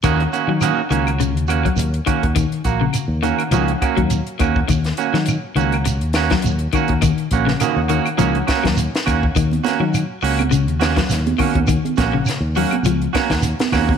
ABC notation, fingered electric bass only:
X:1
M:4/4
L:1/16
Q:"Swing 16ths" 1/4=103
K:Ebm
V:1 name="Fingered electric bass" clef=bass
E,,2 z E,2 z D,,3 E,,3 E,,2 z E,,- | E,, z B,,,2 z E,,2 z D,,2 z E,,2 z E,,2 | E,,2 z E,2 z D,,3 E,,3 E,,2 z E,,- | E,, z B,,,2 z E,,2 z D,,2 z E,,2 z E,,2 |
E,,2 z E,2 z D,,3 E,,3 E,,2 z E,,- | E,, z B,,,2 z E,,2 z D,,2 z E,,2 z E,,2 |]